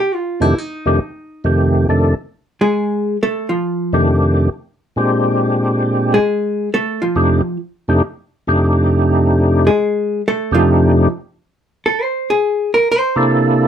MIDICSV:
0, 0, Header, 1, 3, 480
1, 0, Start_track
1, 0, Tempo, 439560
1, 1575, Time_signature, 4, 2, 24, 8
1, 14934, End_track
2, 0, Start_track
2, 0, Title_t, "Hollow-body jazz guitar"
2, 0, Program_c, 0, 26
2, 0, Note_on_c, 0, 67, 90
2, 159, Note_off_c, 0, 67, 0
2, 159, Note_on_c, 0, 65, 72
2, 454, Note_off_c, 0, 65, 0
2, 454, Note_on_c, 0, 64, 81
2, 637, Note_off_c, 0, 64, 0
2, 637, Note_on_c, 0, 63, 77
2, 2065, Note_off_c, 0, 63, 0
2, 2851, Note_on_c, 0, 56, 63
2, 2854, Note_on_c, 0, 68, 80
2, 3452, Note_off_c, 0, 68, 0
2, 3453, Note_off_c, 0, 56, 0
2, 3523, Note_on_c, 0, 57, 69
2, 3525, Note_on_c, 0, 69, 85
2, 3812, Note_off_c, 0, 69, 0
2, 3813, Note_off_c, 0, 57, 0
2, 3813, Note_on_c, 0, 65, 65
2, 3815, Note_on_c, 0, 53, 53
2, 4413, Note_off_c, 0, 65, 0
2, 4415, Note_off_c, 0, 53, 0
2, 6703, Note_on_c, 0, 56, 59
2, 6705, Note_on_c, 0, 68, 80
2, 7299, Note_off_c, 0, 68, 0
2, 7300, Note_off_c, 0, 56, 0
2, 7358, Note_on_c, 0, 69, 93
2, 7364, Note_on_c, 0, 57, 69
2, 7650, Note_off_c, 0, 69, 0
2, 7653, Note_off_c, 0, 57, 0
2, 7662, Note_on_c, 0, 65, 61
2, 7671, Note_on_c, 0, 53, 49
2, 8259, Note_off_c, 0, 65, 0
2, 8264, Note_off_c, 0, 53, 0
2, 10556, Note_on_c, 0, 68, 75
2, 10557, Note_on_c, 0, 56, 56
2, 11146, Note_off_c, 0, 68, 0
2, 11147, Note_off_c, 0, 56, 0
2, 11223, Note_on_c, 0, 57, 74
2, 11223, Note_on_c, 0, 69, 81
2, 11503, Note_off_c, 0, 69, 0
2, 11504, Note_off_c, 0, 57, 0
2, 11516, Note_on_c, 0, 65, 86
2, 11523, Note_on_c, 0, 53, 68
2, 12107, Note_off_c, 0, 65, 0
2, 12110, Note_off_c, 0, 53, 0
2, 12950, Note_on_c, 0, 69, 84
2, 13129, Note_off_c, 0, 69, 0
2, 13129, Note_on_c, 0, 72, 98
2, 13416, Note_off_c, 0, 72, 0
2, 13433, Note_on_c, 0, 68, 88
2, 13868, Note_off_c, 0, 68, 0
2, 13913, Note_on_c, 0, 70, 99
2, 14064, Note_off_c, 0, 70, 0
2, 14104, Note_on_c, 0, 72, 93
2, 14872, Note_off_c, 0, 72, 0
2, 14934, End_track
3, 0, Start_track
3, 0, Title_t, "Tonewheel organ"
3, 0, Program_c, 1, 16
3, 438, Note_on_c, 1, 41, 73
3, 441, Note_on_c, 1, 48, 66
3, 448, Note_on_c, 1, 51, 61
3, 451, Note_on_c, 1, 57, 58
3, 455, Note_on_c, 1, 67, 75
3, 456, Note_on_c, 1, 62, 65
3, 593, Note_off_c, 1, 41, 0
3, 595, Note_off_c, 1, 48, 0
3, 598, Note_off_c, 1, 51, 0
3, 600, Note_off_c, 1, 57, 0
3, 602, Note_off_c, 1, 62, 0
3, 602, Note_off_c, 1, 67, 0
3, 935, Note_on_c, 1, 41, 63
3, 938, Note_on_c, 1, 48, 54
3, 939, Note_on_c, 1, 51, 55
3, 945, Note_on_c, 1, 57, 60
3, 948, Note_on_c, 1, 62, 55
3, 952, Note_on_c, 1, 67, 68
3, 1082, Note_off_c, 1, 41, 0
3, 1083, Note_off_c, 1, 48, 0
3, 1084, Note_off_c, 1, 51, 0
3, 1087, Note_off_c, 1, 57, 0
3, 1088, Note_off_c, 1, 62, 0
3, 1090, Note_off_c, 1, 67, 0
3, 1574, Note_on_c, 1, 41, 63
3, 1575, Note_on_c, 1, 48, 55
3, 1578, Note_on_c, 1, 51, 57
3, 1580, Note_on_c, 1, 57, 58
3, 1593, Note_on_c, 1, 67, 69
3, 2037, Note_off_c, 1, 41, 0
3, 2038, Note_off_c, 1, 48, 0
3, 2040, Note_off_c, 1, 51, 0
3, 2040, Note_off_c, 1, 57, 0
3, 2047, Note_off_c, 1, 67, 0
3, 2055, Note_on_c, 1, 41, 57
3, 2060, Note_on_c, 1, 48, 55
3, 2064, Note_on_c, 1, 51, 53
3, 2064, Note_on_c, 1, 57, 55
3, 2069, Note_on_c, 1, 62, 54
3, 2074, Note_on_c, 1, 69, 63
3, 2336, Note_off_c, 1, 41, 0
3, 2338, Note_off_c, 1, 48, 0
3, 2340, Note_off_c, 1, 51, 0
3, 2340, Note_off_c, 1, 57, 0
3, 2343, Note_off_c, 1, 62, 0
3, 2345, Note_off_c, 1, 69, 0
3, 4288, Note_on_c, 1, 41, 66
3, 4290, Note_on_c, 1, 48, 63
3, 4293, Note_on_c, 1, 51, 54
3, 4297, Note_on_c, 1, 57, 61
3, 4302, Note_on_c, 1, 62, 59
3, 4304, Note_on_c, 1, 67, 67
3, 4902, Note_off_c, 1, 41, 0
3, 4903, Note_off_c, 1, 48, 0
3, 4904, Note_off_c, 1, 51, 0
3, 4906, Note_off_c, 1, 57, 0
3, 4909, Note_off_c, 1, 62, 0
3, 4910, Note_off_c, 1, 67, 0
3, 5417, Note_on_c, 1, 46, 62
3, 5425, Note_on_c, 1, 56, 57
3, 5432, Note_on_c, 1, 62, 59
3, 5433, Note_on_c, 1, 60, 56
3, 5437, Note_on_c, 1, 67, 66
3, 6756, Note_off_c, 1, 46, 0
3, 6760, Note_off_c, 1, 56, 0
3, 6763, Note_off_c, 1, 62, 0
3, 6764, Note_off_c, 1, 60, 0
3, 6766, Note_off_c, 1, 67, 0
3, 7812, Note_on_c, 1, 41, 64
3, 7817, Note_on_c, 1, 48, 62
3, 7819, Note_on_c, 1, 62, 61
3, 7820, Note_on_c, 1, 57, 61
3, 7825, Note_on_c, 1, 63, 60
3, 7831, Note_on_c, 1, 67, 68
3, 8095, Note_off_c, 1, 41, 0
3, 8097, Note_off_c, 1, 48, 0
3, 8098, Note_off_c, 1, 62, 0
3, 8099, Note_off_c, 1, 57, 0
3, 8101, Note_off_c, 1, 63, 0
3, 8105, Note_off_c, 1, 67, 0
3, 8605, Note_on_c, 1, 41, 70
3, 8606, Note_on_c, 1, 48, 61
3, 8612, Note_on_c, 1, 57, 61
3, 8613, Note_on_c, 1, 62, 67
3, 8618, Note_on_c, 1, 63, 64
3, 8622, Note_on_c, 1, 67, 81
3, 8758, Note_off_c, 1, 41, 0
3, 8758, Note_off_c, 1, 48, 0
3, 8761, Note_off_c, 1, 57, 0
3, 8762, Note_off_c, 1, 62, 0
3, 8764, Note_off_c, 1, 63, 0
3, 8766, Note_off_c, 1, 67, 0
3, 9253, Note_on_c, 1, 41, 62
3, 9254, Note_on_c, 1, 48, 59
3, 9259, Note_on_c, 1, 57, 59
3, 9262, Note_on_c, 1, 63, 60
3, 9263, Note_on_c, 1, 62, 60
3, 9268, Note_on_c, 1, 67, 68
3, 10594, Note_off_c, 1, 41, 0
3, 10595, Note_off_c, 1, 48, 0
3, 10597, Note_off_c, 1, 57, 0
3, 10599, Note_off_c, 1, 62, 0
3, 10599, Note_off_c, 1, 63, 0
3, 10602, Note_off_c, 1, 67, 0
3, 11479, Note_on_c, 1, 41, 74
3, 11481, Note_on_c, 1, 48, 71
3, 11491, Note_on_c, 1, 62, 71
3, 11492, Note_on_c, 1, 57, 69
3, 11493, Note_on_c, 1, 63, 67
3, 11499, Note_on_c, 1, 67, 79
3, 12098, Note_off_c, 1, 41, 0
3, 12099, Note_off_c, 1, 48, 0
3, 12105, Note_off_c, 1, 57, 0
3, 12105, Note_off_c, 1, 62, 0
3, 12105, Note_off_c, 1, 63, 0
3, 12108, Note_off_c, 1, 67, 0
3, 14368, Note_on_c, 1, 48, 76
3, 14370, Note_on_c, 1, 58, 71
3, 14375, Note_on_c, 1, 62, 69
3, 14380, Note_on_c, 1, 64, 64
3, 14390, Note_on_c, 1, 69, 85
3, 14934, Note_off_c, 1, 48, 0
3, 14934, Note_off_c, 1, 58, 0
3, 14934, Note_off_c, 1, 62, 0
3, 14934, Note_off_c, 1, 64, 0
3, 14934, Note_off_c, 1, 69, 0
3, 14934, End_track
0, 0, End_of_file